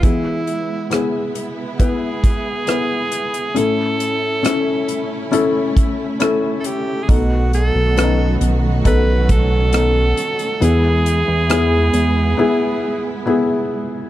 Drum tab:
HH |x-x-x-x-x-x-x-xx|x-x-x-x-x-x-x-x-|x-x-x-x-x-x-x-xx|x-x-x-x---------|
SD |----r-------r---|----r-------r---|----r-------r---|----r-----------|
BD |o-------o-o-----|----------o-----|o-------o-o-----|----------------|